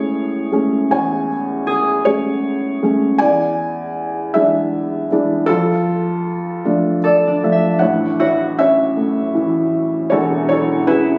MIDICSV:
0, 0, Header, 1, 3, 480
1, 0, Start_track
1, 0, Key_signature, 3, "major"
1, 0, Tempo, 767263
1, 567, Time_signature, 6, 3, 24, 8
1, 6995, End_track
2, 0, Start_track
2, 0, Title_t, "Harp"
2, 0, Program_c, 0, 46
2, 0, Note_on_c, 0, 61, 45
2, 926, Note_off_c, 0, 61, 0
2, 1044, Note_on_c, 0, 68, 57
2, 2466, Note_off_c, 0, 68, 0
2, 4403, Note_on_c, 0, 69, 57
2, 4550, Note_on_c, 0, 62, 45
2, 4706, Note_on_c, 0, 76, 43
2, 5128, Note_on_c, 0, 66, 62
2, 5777, Note_off_c, 0, 69, 0
2, 5784, Note_off_c, 0, 76, 0
2, 6301, Note_off_c, 0, 62, 0
2, 6653, Note_off_c, 0, 66, 0
2, 6802, Note_on_c, 0, 64, 69
2, 6995, Note_off_c, 0, 64, 0
2, 6995, End_track
3, 0, Start_track
3, 0, Title_t, "Felt piano"
3, 0, Program_c, 1, 0
3, 0, Control_c, 1, 64, 127
3, 0, Note_on_c, 1, 45, 56
3, 0, Note_on_c, 1, 56, 42
3, 0, Note_on_c, 1, 57, 40
3, 0, Note_on_c, 1, 61, 45
3, 0, Note_on_c, 1, 68, 63
3, 0, Note_on_c, 1, 73, 88
3, 0, Note_on_c, 1, 80, 89
3, 311, Note_off_c, 1, 56, 0
3, 311, Note_off_c, 1, 57, 0
3, 313, Note_off_c, 1, 61, 0
3, 326, Note_on_c, 1, 56, 43
3, 330, Note_on_c, 1, 57, 39
3, 333, Note_on_c, 1, 61, 49
3, 541, Note_off_c, 1, 45, 0
3, 547, Note_off_c, 1, 68, 0
3, 566, Note_off_c, 1, 73, 0
3, 567, Note_on_c, 1, 40, 57
3, 570, Note_off_c, 1, 80, 0
3, 570, Note_on_c, 1, 80, 84
3, 576, Note_on_c, 1, 73, 64
3, 792, Note_off_c, 1, 56, 0
3, 795, Note_off_c, 1, 57, 0
3, 796, Note_off_c, 1, 61, 0
3, 1266, Note_off_c, 1, 73, 0
3, 1283, Note_on_c, 1, 73, 88
3, 1289, Note_on_c, 1, 56, 41
3, 1291, Note_on_c, 1, 57, 43
3, 1291, Note_on_c, 1, 68, 61
3, 1292, Note_on_c, 1, 61, 49
3, 1310, Note_off_c, 1, 80, 0
3, 1752, Note_off_c, 1, 56, 0
3, 1753, Note_off_c, 1, 57, 0
3, 1754, Note_off_c, 1, 61, 0
3, 1768, Note_on_c, 1, 56, 44
3, 1775, Note_on_c, 1, 57, 41
3, 1776, Note_on_c, 1, 61, 50
3, 1979, Note_off_c, 1, 40, 0
3, 1982, Note_off_c, 1, 68, 0
3, 1992, Note_on_c, 1, 80, 95
3, 1999, Note_off_c, 1, 56, 0
3, 1999, Note_on_c, 1, 74, 66
3, 2002, Note_off_c, 1, 57, 0
3, 2003, Note_off_c, 1, 61, 0
3, 2008, Note_on_c, 1, 40, 60
3, 2012, Control_c, 1, 64, 0
3, 2024, Note_off_c, 1, 73, 0
3, 2114, Control_c, 1, 64, 127
3, 2693, Note_off_c, 1, 74, 0
3, 2714, Note_on_c, 1, 76, 84
3, 2722, Note_on_c, 1, 52, 42
3, 2723, Note_on_c, 1, 56, 37
3, 2730, Note_on_c, 1, 62, 49
3, 2736, Note_off_c, 1, 80, 0
3, 3169, Note_off_c, 1, 76, 0
3, 3184, Note_off_c, 1, 52, 0
3, 3185, Note_off_c, 1, 56, 0
3, 3188, Note_off_c, 1, 62, 0
3, 3203, Note_on_c, 1, 52, 49
3, 3204, Note_on_c, 1, 56, 40
3, 3205, Note_on_c, 1, 62, 49
3, 3413, Note_off_c, 1, 40, 0
3, 3418, Note_on_c, 1, 69, 95
3, 3432, Note_off_c, 1, 52, 0
3, 3433, Note_off_c, 1, 56, 0
3, 3433, Note_off_c, 1, 62, 0
3, 3434, Note_on_c, 1, 65, 67
3, 3441, Note_on_c, 1, 41, 60
3, 3446, Control_c, 1, 64, 0
3, 3560, Control_c, 1, 64, 127
3, 4160, Note_on_c, 1, 53, 37
3, 4161, Note_on_c, 1, 57, 37
3, 4164, Note_on_c, 1, 62, 44
3, 4366, Note_off_c, 1, 69, 0
3, 4374, Note_off_c, 1, 65, 0
3, 4409, Note_on_c, 1, 74, 60
3, 4629, Note_off_c, 1, 53, 0
3, 4629, Note_off_c, 1, 57, 0
3, 4630, Note_off_c, 1, 74, 0
3, 4631, Note_off_c, 1, 62, 0
3, 4650, Note_on_c, 1, 53, 44
3, 4651, Note_on_c, 1, 57, 39
3, 4655, Note_on_c, 1, 76, 60
3, 4656, Note_on_c, 1, 62, 43
3, 4862, Note_off_c, 1, 41, 0
3, 4873, Note_on_c, 1, 78, 74
3, 4874, Note_off_c, 1, 76, 0
3, 4881, Note_off_c, 1, 53, 0
3, 4882, Note_off_c, 1, 57, 0
3, 4884, Note_off_c, 1, 62, 0
3, 4888, Note_on_c, 1, 73, 60
3, 4890, Note_on_c, 1, 45, 60
3, 4893, Control_c, 1, 64, 0
3, 4894, Note_on_c, 1, 33, 62
3, 5017, Control_c, 1, 64, 127
3, 5111, Note_off_c, 1, 73, 0
3, 5128, Note_off_c, 1, 78, 0
3, 5128, Note_on_c, 1, 52, 47
3, 5128, Note_on_c, 1, 76, 75
3, 5138, Note_on_c, 1, 73, 58
3, 5357, Note_off_c, 1, 73, 0
3, 5362, Note_off_c, 1, 76, 0
3, 5371, Note_on_c, 1, 76, 90
3, 5372, Note_on_c, 1, 61, 50
3, 5383, Note_on_c, 1, 73, 61
3, 5611, Note_on_c, 1, 57, 45
3, 5838, Note_off_c, 1, 52, 0
3, 5847, Note_on_c, 1, 52, 52
3, 6305, Note_off_c, 1, 45, 0
3, 6305, Note_off_c, 1, 61, 0
3, 6307, Note_off_c, 1, 33, 0
3, 6308, Note_off_c, 1, 73, 0
3, 6317, Note_on_c, 1, 73, 77
3, 6328, Note_on_c, 1, 28, 60
3, 6329, Note_on_c, 1, 40, 70
3, 6337, Note_on_c, 1, 69, 62
3, 6358, Note_off_c, 1, 76, 0
3, 6544, Note_off_c, 1, 57, 0
3, 6552, Note_off_c, 1, 73, 0
3, 6555, Note_off_c, 1, 69, 0
3, 6557, Note_off_c, 1, 52, 0
3, 6561, Note_on_c, 1, 73, 82
3, 6566, Note_on_c, 1, 52, 49
3, 6581, Note_on_c, 1, 69, 59
3, 6786, Note_off_c, 1, 73, 0
3, 6797, Note_off_c, 1, 69, 0
3, 6801, Note_on_c, 1, 71, 82
3, 6807, Note_on_c, 1, 61, 53
3, 6822, Note_on_c, 1, 68, 55
3, 6995, Note_off_c, 1, 28, 0
3, 6995, Note_off_c, 1, 40, 0
3, 6995, Note_off_c, 1, 52, 0
3, 6995, Note_off_c, 1, 61, 0
3, 6995, Note_off_c, 1, 68, 0
3, 6995, Note_off_c, 1, 71, 0
3, 6995, End_track
0, 0, End_of_file